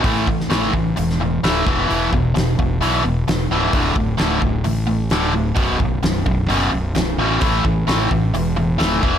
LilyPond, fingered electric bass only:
\new Staff \with { instrumentName = "Fingered electric bass" } { \clef bass \time 4/4 \key a \mixolydian \tempo 4 = 130 a,,8 a,,8 a,,8 a,,8 e,,4 d,,8 e,,8 | e,,8 e,,8 e,,8 e,,8 b,,8 e,,8 e,,8 cis,,8 | d,,8 d,,8 d,,8 d,,8 a,,4 d,,4 | b,,,8 b,,,8 b,,,8 b,,,8 fis,,8 b,,,8 b,,,8 a,,8 |
a,,8 a,,8 a,,8 a,,8 e,,4 d,,8 e,,8 | }